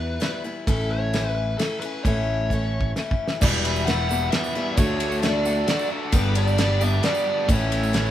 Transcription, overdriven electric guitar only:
3.41 E2 B2 E3 G3 B3 E4
3.64 E3 G3 B3 E4
3.87 E3 G3 B3 E4
4.09 E2 B2 E3 G3 B3 E4
4.31 E3 G3 B3 E4
4.56 E2 B2 E3 G3 B3 E4
4.77 D3 A3 D4 F#4
5.00 A3 D4 F#4
5.23 D3 A3 D4 F#4
5.45 D3 A3 D4 F#4
5.67 D3 A3 D4 F#4
5.90 D3 A3 D4 F#4
6.12 G2 D3 G3 B3 D4 G4
6.35 G3 B3 D4 G4
6.57 G3 B3 D4 G4
6.80 G2 D3 G3 B3 D4 G4
7.02 G3 B3 D4 G4
7.25 G2 D3 G3 B3 D4 G4
7.46 A2 E3 A3 C#4 E4
7.70 A3 C#4 E4
7.93 E3 A3 C#4 E4

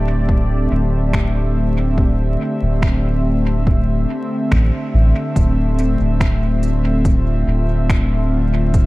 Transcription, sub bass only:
Already playing: D1
0.71 D1
2.62 D1
4.51 A1
4.94 A1
5.36 D1
6.00 D1
7.47 D1

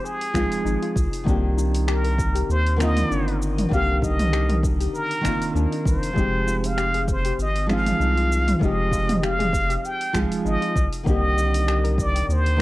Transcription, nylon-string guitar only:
Already playing: F3 G#3 C4 D#4 G4
0.34 F3 G#3 C4 D#4 F4
1.24 D#3 A#3 C4
1.28 D4 G4
2.76 D#3 A#3 C4
2.81 D3 F4
3.69 D#3 A#3 C4
3.73 D3 G4
5.21 D#3 A#3 C4
5.26 D4 F4
6.13 F3 G#3 C4
6.17 D#4 G4
7.67 F3 G#3 C4
7.71 D#4 F4
8.59 F3 G#3 C4
8.63 D#4 G4
10.13 F3 G#3 C4 D#4 F4
11.03 D#3 A#3 C4
11.08 D3 G4
12.57 D#3 A#3

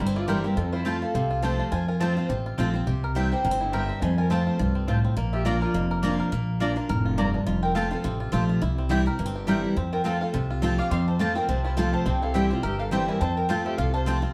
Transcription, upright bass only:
0.00 G1
0.57 F2
1.14 C2
1.72 F2
2.30 A1
2.58 A#1
2.87 C2
3.45 G1
4.02 F2
4.59 C2
5.17 A#1
5.74 F1
6.32 A#1
6.90 F1
7.47 F1
8.05 A1
8.33 A#1
8.62 C2
9.19 G1
9.77 F2
10.34 C2
10.91 F2
11.49 C2
12.06 C2
12.64 G1
13.21 F2
13.78 C2

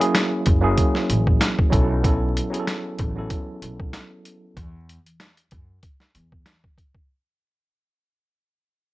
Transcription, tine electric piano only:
Already playing: F#3
0.00 A#3 C#4 E4 G#4
0.61 F#3 A#3 C#4 E4 G#4
1.70 F#3 B3 C#4 E4 A4
2.03 F#3 B3 C#4 E4 A4
2.50 F#3 B3 C#4 E4 G#4
2.60 A4
3.15 F#3 B3 C#4 E4 A4

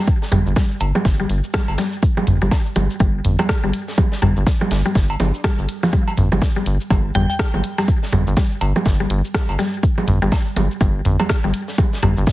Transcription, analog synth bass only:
0.32 G1
0.46 G1
0.81 G1
1.05 G1
1.30 G1
1.69 G1
2.27 G1
2.42 G1
2.76 G1
3.00 G1
3.25 G1
3.64 G1
4.22 G1
4.37 G1
4.71 G1
4.95 G1
5.20 G1
5.59 G1
6.18 G1
6.32 G1
6.66 G1
6.91 G1
7.15 G1
7.54 G1
8.13 G1
8.27 G1
8.61 G1
8.86 G1
9.10 G1
9.49 G1
10.07 G1
10.22 G1
10.56 G1
10.81 G1
11.05 G1
11.44 G1
12.03 G1
12.17 G1

